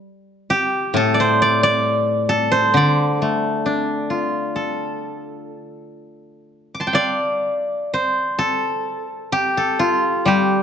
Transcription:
0.50 G4
0.94 A2 A4
1.14 D5
1.20 C5
1.42 D5
1.63 D5
2.29 A4
2.52 C5
2.74 D3 D5
3.22 A3
3.66 D4
4.10 F4
4.56 A4
6.75 D6
6.80 A5 C6
6.87 G5
6.93 D5 F5
7.94 C5
8.39 A4
9.32 G4
9.57 A4
9.79 F4
10.26 G3 G4

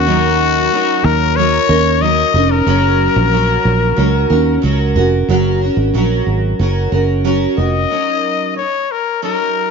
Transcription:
Already playing: D#2 F#4
0.06 D#3 F#3 C#4 D#4 A#4
0.71 F#3 C#4 D#4 A#4
1.04 D#2 A#4
1.36 F#3 C#4 D#4 A#4 C#5
1.69 D#2 C#4 D#4 A#4
2.01 F#3 C#4 D#4 A#4 D#5
2.34 F1 C#4 D#4 A#4
2.51 A#4
2.66 F#1 F#3 C#4 F#4 A#4
3.16 A#1
3.32 F#3 C#4 F#4 A#4
3.65 A#1
3.96 C#2 F#3 C#4 F#4 A#4
4.30 D#2 C#4 F#4 A#4
4.62 C#2 F#3 C#4 F#4 A#4
4.95 F1 C#4 F#4 A#4
5.29 F#1 F#3 C#4 F#4 A#4
5.61 C#4 F#4 A#4
5.77 G#1
5.94 A#1 F#3 C#4 F#4 A#4
6.26 G#1
6.59 F#1 F#3 C#4 F#4 A#4
6.92 F#1 C#4 F#4 A#4
7.24 F#3 C#4 F#4 A#4
7.57 F1 C#4 F#4 A#4 D#5
7.90 F#3 C#4 D#4 A#4
8.55 F#3 C#4 C#5
8.91 A#4
9.22 F#3 C#4 D#4 A#4

